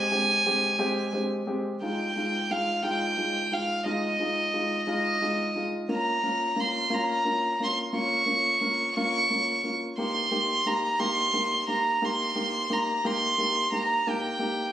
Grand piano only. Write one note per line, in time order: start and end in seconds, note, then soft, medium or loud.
0.11 0.38 G#3 medium
0.11 0.38 C4 medium
0.11 0.38 G4 medium
0.46 0.72 G#3 medium
0.46 0.72 C4 medium
0.46 0.73 G4 medium
0.79 1.06 G#3 medium
0.79 1.06 C4 medium
0.79 1.06 G4 loud
1.13 1.40 G#3 medium
1.13 1.40 C4 medium
1.13 1.40 G4 medium
1.47 1.74 G#3 medium
1.47 1.74 C4 medium
1.47 1.74 G4 medium
1.82 2.08 G#3 medium
1.82 2.08 D#4 medium
1.82 2.08 F4 medium
2.16 2.42 G#3 medium
2.16 2.43 D#4 medium
2.16 2.43 F4 medium
2.51 2.77 G#3 medium
2.51 2.77 D#4 medium
2.51 2.77 F4 medium
2.83 3.10 G#3 medium
2.83 3.10 D#4 medium
2.83 3.10 F4 medium
3.17 3.44 G#3 medium
3.17 3.44 D#4 medium
3.17 3.44 F4 medium
3.52 3.78 G#3 medium
3.52 3.78 D#4 medium
3.52 3.78 F4 medium
3.85 4.12 G#3 medium
3.85 4.12 D#4 medium
3.85 4.12 F4 medium
4.20 4.46 G#3 medium
4.20 4.47 D#4 medium
4.20 4.47 F4 medium
4.53 4.80 G#3 medium
4.53 4.80 D#4 medium
4.53 4.80 F4 medium
4.87 5.14 G#3 medium
4.87 5.14 D#4 medium
4.87 5.14 F4 medium
5.21 5.48 G#3 medium
5.21 5.48 D#4 medium
5.21 5.48 F4 medium
5.55 5.82 G#3 medium
5.55 5.82 D#4 medium
5.55 5.82 F4 medium
5.89 6.16 A#3 medium
5.89 6.16 C#4 medium
5.89 6.16 F4 medium
6.23 6.50 A#3 medium
6.23 6.50 C#4 medium
6.23 6.50 F4 medium
6.56 6.83 A#3 medium
6.56 6.83 C#4 medium
6.56 6.84 F4 medium
6.90 7.17 A#3 medium
6.90 7.18 C#4 medium
6.90 7.18 F4 medium
7.25 7.52 A#3 medium
7.25 7.52 C#4 medium
7.25 7.52 F4 medium
7.60 7.86 A#3 medium
7.60 7.87 C#4 medium
7.60 7.86 F4 medium
7.93 8.20 A#3 medium
7.93 8.20 C#4 medium
7.93 8.20 F4 medium
8.26 8.53 A#3 medium
8.26 8.54 C#4 medium
8.26 8.54 F4 medium
8.61 8.88 A#3 medium
8.61 8.88 C#4 medium
8.61 8.88 F4 medium
8.97 9.23 A#3 medium
8.97 9.23 C#4 medium
8.97 9.23 F4 medium
9.30 9.56 A#3 medium
9.30 9.57 C#4 medium
9.30 9.57 F4 medium
9.64 9.90 A#3 medium
9.64 9.90 C#4 medium
9.64 9.91 F4 medium
9.98 10.24 A#3 medium
9.98 10.24 D#4 medium
9.98 10.25 G4 medium
10.31 10.58 A#3 medium
10.31 10.58 D#4 medium
10.31 10.58 G4 medium
10.66 10.92 A#3 medium
10.66 10.92 D#4 medium
10.66 10.92 G4 medium
11.00 11.26 A#3 medium
11.00 11.26 D#4 medium
11.00 11.26 G4 medium
11.33 11.60 A#3 medium
11.33 11.60 D#4 medium
11.33 11.60 G4 medium
11.68 11.94 A#3 medium
11.68 11.94 D#4 medium
11.68 11.94 G4 medium
12.02 12.28 A#3 medium
12.02 12.28 D#4 medium
12.02 12.28 G4 medium
12.35 12.62 A#3 medium
12.35 12.62 D#4 medium
12.35 12.62 G4 medium
12.70 12.96 A#3 medium
12.70 12.96 D#4 medium
12.70 12.96 G4 medium
13.05 13.30 A#3 medium
13.05 13.30 D#4 medium
13.05 13.31 G4 medium
13.38 13.64 A#3 medium
13.38 13.64 D#4 medium
13.38 13.65 G4 medium
13.72 13.98 A#3 medium
13.72 13.98 D#4 medium
13.72 13.98 G4 medium
14.07 14.32 A#3 medium
14.07 14.33 D#4 medium
14.07 14.33 G4 medium
14.39 14.65 A#3 medium
14.39 14.66 D#4 medium
14.39 14.66 G4 medium